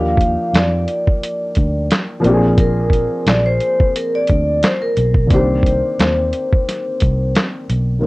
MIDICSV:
0, 0, Header, 1, 5, 480
1, 0, Start_track
1, 0, Key_signature, -3, "minor"
1, 0, Tempo, 681818
1, 1813, Time_signature, 4, 2, 24, 8
1, 5678, End_track
2, 0, Start_track
2, 0, Title_t, "Vibraphone"
2, 0, Program_c, 0, 11
2, 0, Note_on_c, 0, 77, 101
2, 391, Note_on_c, 0, 74, 77
2, 398, Note_off_c, 0, 77, 0
2, 1314, Note_off_c, 0, 74, 0
2, 1831, Note_on_c, 0, 70, 87
2, 2274, Note_off_c, 0, 70, 0
2, 2314, Note_on_c, 0, 74, 99
2, 2436, Note_on_c, 0, 72, 98
2, 2439, Note_off_c, 0, 74, 0
2, 2755, Note_off_c, 0, 72, 0
2, 2789, Note_on_c, 0, 70, 84
2, 2917, Note_off_c, 0, 70, 0
2, 2921, Note_on_c, 0, 74, 96
2, 3262, Note_on_c, 0, 72, 90
2, 3271, Note_off_c, 0, 74, 0
2, 3319, Note_off_c, 0, 72, 0
2, 3393, Note_on_c, 0, 70, 88
2, 3713, Note_off_c, 0, 70, 0
2, 3753, Note_on_c, 0, 72, 82
2, 5155, Note_off_c, 0, 72, 0
2, 5678, End_track
3, 0, Start_track
3, 0, Title_t, "Upright piano"
3, 0, Program_c, 1, 0
3, 0, Note_on_c, 1, 53, 61
3, 0, Note_on_c, 1, 58, 59
3, 0, Note_on_c, 1, 62, 59
3, 0, Note_on_c, 1, 63, 56
3, 0, Note_on_c, 1, 67, 69
3, 22, Control_c, 1, 64, 127
3, 1531, Note_off_c, 1, 53, 0
3, 1538, Note_off_c, 1, 58, 0
3, 1546, Note_off_c, 1, 62, 0
3, 1549, Note_on_c, 1, 53, 74
3, 1552, Note_off_c, 1, 63, 0
3, 1558, Note_off_c, 1, 67, 0
3, 1561, Note_on_c, 1, 58, 71
3, 1576, Note_on_c, 1, 60, 67
3, 1582, Control_c, 1, 64, 0
3, 1587, Note_on_c, 1, 62, 67
3, 1602, Note_on_c, 1, 67, 66
3, 1638, Note_off_c, 1, 67, 0
3, 1647, Note_on_c, 1, 68, 83
3, 1686, Control_c, 1, 64, 127
3, 3453, Note_off_c, 1, 53, 0
3, 3459, Note_off_c, 1, 58, 0
3, 3466, Note_off_c, 1, 60, 0
3, 3472, Note_off_c, 1, 62, 0
3, 3502, Note_off_c, 1, 68, 0
3, 3710, Note_on_c, 1, 50, 47
3, 3720, Note_on_c, 1, 58, 57
3, 3731, Note_on_c, 1, 60, 57
3, 3744, Control_c, 1, 64, 0
3, 3747, Note_on_c, 1, 62, 57
3, 3753, Note_on_c, 1, 51, 61
3, 3759, Note_on_c, 1, 67, 69
3, 3772, Note_off_c, 1, 50, 0
3, 3882, Control_c, 1, 64, 127
3, 5615, Note_off_c, 1, 51, 0
3, 5618, Note_off_c, 1, 58, 0
3, 5624, Note_off_c, 1, 60, 0
3, 5626, Note_on_c, 1, 51, 55
3, 5632, Note_off_c, 1, 62, 0
3, 5638, Note_off_c, 1, 67, 0
3, 5639, Note_on_c, 1, 58, 50
3, 5651, Note_on_c, 1, 60, 50
3, 5663, Control_c, 1, 64, 0
3, 5678, Note_off_c, 1, 51, 0
3, 5678, Note_off_c, 1, 58, 0
3, 5678, Note_off_c, 1, 60, 0
3, 5678, End_track
4, 0, Start_track
4, 0, Title_t, "Fingered electric bass"
4, 0, Program_c, 2, 33
4, 0, Note_on_c, 2, 39, 93
4, 251, Note_off_c, 2, 39, 0
4, 378, Note_on_c, 2, 41, 86
4, 603, Note_off_c, 2, 41, 0
4, 1109, Note_on_c, 2, 38, 82
4, 1329, Note_off_c, 2, 38, 0
4, 1579, Note_on_c, 2, 34, 97
4, 2160, Note_off_c, 2, 34, 0
4, 2299, Note_on_c, 2, 34, 82
4, 2524, Note_off_c, 2, 34, 0
4, 3028, Note_on_c, 2, 38, 91
4, 3248, Note_off_c, 2, 38, 0
4, 3501, Note_on_c, 2, 35, 88
4, 3725, Note_off_c, 2, 35, 0
4, 3740, Note_on_c, 2, 36, 107
4, 4089, Note_off_c, 2, 36, 0
4, 4221, Note_on_c, 2, 39, 91
4, 4445, Note_off_c, 2, 39, 0
4, 4947, Note_on_c, 2, 36, 82
4, 5168, Note_off_c, 2, 36, 0
4, 5419, Note_on_c, 2, 35, 92
4, 5644, Note_off_c, 2, 35, 0
4, 5678, End_track
5, 0, Start_track
5, 0, Title_t, "Drums"
5, 124, Note_on_c, 9, 36, 85
5, 147, Note_on_c, 9, 42, 57
5, 194, Note_off_c, 9, 36, 0
5, 218, Note_off_c, 9, 42, 0
5, 384, Note_on_c, 9, 42, 67
5, 391, Note_on_c, 9, 38, 107
5, 397, Note_on_c, 9, 39, 86
5, 455, Note_off_c, 9, 42, 0
5, 462, Note_off_c, 9, 38, 0
5, 468, Note_off_c, 9, 39, 0
5, 619, Note_on_c, 9, 42, 59
5, 689, Note_off_c, 9, 42, 0
5, 756, Note_on_c, 9, 36, 93
5, 827, Note_off_c, 9, 36, 0
5, 869, Note_on_c, 9, 42, 82
5, 939, Note_off_c, 9, 42, 0
5, 1092, Note_on_c, 9, 42, 62
5, 1104, Note_on_c, 9, 36, 81
5, 1162, Note_off_c, 9, 42, 0
5, 1175, Note_off_c, 9, 36, 0
5, 1342, Note_on_c, 9, 42, 86
5, 1349, Note_on_c, 9, 38, 95
5, 1356, Note_on_c, 9, 39, 78
5, 1412, Note_off_c, 9, 42, 0
5, 1420, Note_off_c, 9, 38, 0
5, 1426, Note_off_c, 9, 39, 0
5, 1579, Note_on_c, 9, 42, 59
5, 1650, Note_off_c, 9, 42, 0
5, 1815, Note_on_c, 9, 36, 106
5, 1815, Note_on_c, 9, 42, 60
5, 1885, Note_off_c, 9, 36, 0
5, 1885, Note_off_c, 9, 42, 0
5, 2041, Note_on_c, 9, 36, 86
5, 2064, Note_on_c, 9, 42, 60
5, 2111, Note_off_c, 9, 36, 0
5, 2134, Note_off_c, 9, 42, 0
5, 2300, Note_on_c, 9, 42, 68
5, 2307, Note_on_c, 9, 38, 112
5, 2313, Note_on_c, 9, 39, 85
5, 2370, Note_off_c, 9, 42, 0
5, 2377, Note_off_c, 9, 38, 0
5, 2383, Note_off_c, 9, 39, 0
5, 2538, Note_on_c, 9, 42, 58
5, 2609, Note_off_c, 9, 42, 0
5, 2675, Note_on_c, 9, 36, 95
5, 2746, Note_off_c, 9, 36, 0
5, 2786, Note_on_c, 9, 42, 82
5, 2856, Note_off_c, 9, 42, 0
5, 3007, Note_on_c, 9, 42, 66
5, 3023, Note_on_c, 9, 36, 87
5, 3078, Note_off_c, 9, 42, 0
5, 3093, Note_off_c, 9, 36, 0
5, 3258, Note_on_c, 9, 42, 89
5, 3266, Note_on_c, 9, 38, 98
5, 3272, Note_on_c, 9, 39, 73
5, 3328, Note_off_c, 9, 42, 0
5, 3336, Note_off_c, 9, 38, 0
5, 3342, Note_off_c, 9, 39, 0
5, 3498, Note_on_c, 9, 42, 57
5, 3569, Note_off_c, 9, 42, 0
5, 3622, Note_on_c, 9, 36, 87
5, 3692, Note_off_c, 9, 36, 0
5, 3734, Note_on_c, 9, 42, 63
5, 3736, Note_on_c, 9, 36, 105
5, 3805, Note_off_c, 9, 42, 0
5, 3806, Note_off_c, 9, 36, 0
5, 3962, Note_on_c, 9, 36, 84
5, 3986, Note_on_c, 9, 42, 58
5, 4033, Note_off_c, 9, 36, 0
5, 4057, Note_off_c, 9, 42, 0
5, 4220, Note_on_c, 9, 42, 67
5, 4227, Note_on_c, 9, 38, 104
5, 4233, Note_on_c, 9, 39, 82
5, 4291, Note_off_c, 9, 42, 0
5, 4297, Note_off_c, 9, 38, 0
5, 4304, Note_off_c, 9, 39, 0
5, 4457, Note_on_c, 9, 42, 60
5, 4527, Note_off_c, 9, 42, 0
5, 4596, Note_on_c, 9, 36, 96
5, 4666, Note_off_c, 9, 36, 0
5, 4708, Note_on_c, 9, 38, 31
5, 4709, Note_on_c, 9, 42, 85
5, 4779, Note_off_c, 9, 38, 0
5, 4779, Note_off_c, 9, 42, 0
5, 4931, Note_on_c, 9, 42, 63
5, 4944, Note_on_c, 9, 36, 81
5, 5001, Note_off_c, 9, 42, 0
5, 5014, Note_off_c, 9, 36, 0
5, 5178, Note_on_c, 9, 42, 81
5, 5186, Note_on_c, 9, 38, 98
5, 5192, Note_on_c, 9, 39, 74
5, 5248, Note_off_c, 9, 42, 0
5, 5256, Note_off_c, 9, 38, 0
5, 5262, Note_off_c, 9, 39, 0
5, 5419, Note_on_c, 9, 42, 59
5, 5489, Note_off_c, 9, 42, 0
5, 5678, End_track
0, 0, End_of_file